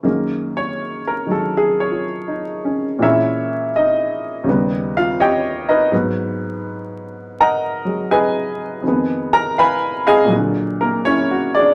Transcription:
0.03 F#2 D#3 G#3 A#3
0.57 C#5
1.07 A#4
1.26 D#3 F#3 G#3
1.31 A4
1.57 G#4
1.80 C#5
1.91 F4
2.28 D#4
2.65 C#4
2.99 A#2 E3 G#3 E4 C#5 E5
3.03 C#4 A#4
3.76 D#4 D#5
4.44 D#2 C#3 G3
4.49 B3
4.97 F4 F5
5.20 G4 C#5 D#5 G5
5.68 D#4 A#4 B4 D#5
5.92 G#2 F#3 B3
7.40 A#4 D#5 F#5 A#5
7.85 F#3 G#3
8.11 G#4 B4 D#5 G#5
8.82 F2 D#3 G#3
8.88 B3
9.33 A#4 A#5
9.58 B4 F5 G#5 B5
10.07 G#4 D#5 F5 G#5
10.25 A#2 F#3
10.30 G#3 A#3
10.36 D3
10.81 A#3 A#4
11.05 C#4 E4 C#5
11.31 F#4
11.55 G#4 D5
11.59 D4

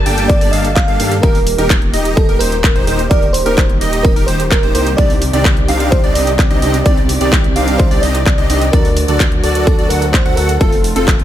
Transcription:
Already playing: G2 A#3 D4 G4 A4 A#4 A5
0.06 G1 A#3 D4 G4 A4 G5, open hi-hat
0.18 closed hi-hat
0.28 D5, kick, closed hi-hat
0.41 G1 A#3 D4 G4 A4 D5, open hi-hat
0.51 G1 A#3 D4 G4 A4 D#5 F5, open hi-hat
0.65 closed hi-hat
0.75 F5, kick, clap, closed hi-hat
0.88 G2 A#3 D4 G4 A4 F5, closed hi-hat
0.99 G2 D#3 A#3 D4 G4 A4 F5, open hi-hat
1.12 closed hi-hat
1.22 D#1 D#3 A#3 D#4 G4 A#4, kick, closed hi-hat
1.35 open hi-hat
1.47 open hi-hat
1.57 D#1 D#3 A#3 D#4 G4 A#4, closed hi-hat
1.70 kick, clap, closed hi-hat
1.82 closed hi-hat
1.94 D#1 D#4 G4 D#5, open hi-hat
2.05 closed hi-hat
2.16 A4, kick, closed hi-hat
2.29 D#1 D#4 G4 A#4, closed hi-hat
2.39 D#1 D#4 G4 A#4 C5, open hi-hat
2.52 closed hi-hat
2.64 kick, clap, closed hi-hat
2.75 D#1 D#4 G4 C5, closed hi-hat
2.87 D#1 D#3 A#3 D#4 G4 A#4 C5, open hi-hat
2.99 closed hi-hat
3.10 D#1 D#3 A#3 D#4 G4 A#4 D5, kick, closed hi-hat
3.23 D5, closed hi-hat
3.33 C5, open hi-hat
3.45 D#1 D#3 A#3 D#4 G4 A#4, closed hi-hat
3.58 kick, clap, closed hi-hat
3.69 closed hi-hat
3.81 D#1 D#4 G4 D#5, open hi-hat
3.93 closed hi-hat
4.03 A#4, kick, closed hi-hat
4.16 D#1 D#4 G4 A#4, open hi-hat
4.26 D#1 D#4 G4 C5, open hi-hat
4.40 closed hi-hat
4.50 A#4, kick, clap, closed hi-hat
4.63 D#1 D#4 G4 C5, closed hi-hat
4.74 C2 A#3 D#4 G4 A#4 C5, open hi-hat
4.87 closed hi-hat
4.97 C2 C3 C4 D4 D#4 G4 D5, kick, closed hi-hat
5.10 open hi-hat
5.22 open hi-hat
5.32 C2 C3 D#3 C4 D4 D#4 G4 D5, closed hi-hat
5.45 kick, clap, closed hi-hat
5.57 closed hi-hat
5.68 C2 C4 D4 D#4 G4 F5, open hi-hat
5.80 closed hi-hat
5.91 C5, kick, closed hi-hat
6.04 C2 C4 D4 D#4 G4 D5, closed hi-hat
6.14 C2 C4 D4 D#4 G4 D5 D#5, open hi-hat
6.27 closed hi-hat
6.39 kick, clap, closed hi-hat
6.50 C2 C4 D4 D#4 G4 D#5, closed hi-hat
6.62 C2 C3 C4 D4 D#4 G4 D#5, open hi-hat
6.74 closed hi-hat
6.84 C2 C3 C4 D4 D#4 G4 D5, kick, closed hi-hat
6.97 closed hi-hat
7.09 open hi-hat
7.20 C2 C3 D#3 C4 D4 D#4 G4 D5, closed hi-hat
7.33 kick, clap, closed hi-hat
7.44 closed hi-hat
7.56 C2 C4 D4 D#4 G4 F5, open hi-hat
7.68 closed hi-hat
7.78 C5, kick, closed hi-hat
7.91 C2 C4 D4 D#4 G4 D5, open hi-hat
8.01 C2 C4 D4 D#4 G4 D5 D#5, open hi-hat
8.15 closed hi-hat
8.26 kick, clap, closed hi-hat
8.38 C2 C4 D4 D#4 G4 D#5, closed hi-hat
8.49 C2 C4 D4 D#4 G4 D#5, open hi-hat
8.62 closed hi-hat
8.72 D2 D3 F#3 D4 F#4 A4 A#4 D5, kick, closed hi-hat
8.85 open hi-hat
8.97 open hi-hat
9.07 D2 D3 F#3 D4 F#4 A4 D5, closed hi-hat
9.20 kick, clap, closed hi-hat
9.32 closed hi-hat
9.43 D2 F#4 A4 D5, open hi-hat
9.55 closed hi-hat
9.66 A4, kick, closed hi-hat
9.79 D2 F#4 A4 D5, closed hi-hat
9.89 D2 F#4 A4 A#4 F#5, open hi-hat
10.01 A#4, closed hi-hat
10.13 C5, kick, clap, closed hi-hat
10.26 D2 F#4 A4 F#5, closed hi-hat
10.36 D2 A3 D4 F#4 A4 A#4 F#5, open hi-hat
10.49 closed hi-hat
10.59 F1 A3 C4 F4 A4, kick, closed hi-hat
10.72 open hi-hat
10.84 open hi-hat
10.95 F1 A3 C4 F4 A4, closed hi-hat
11.08 kick, clap, closed hi-hat
11.19 closed hi-hat

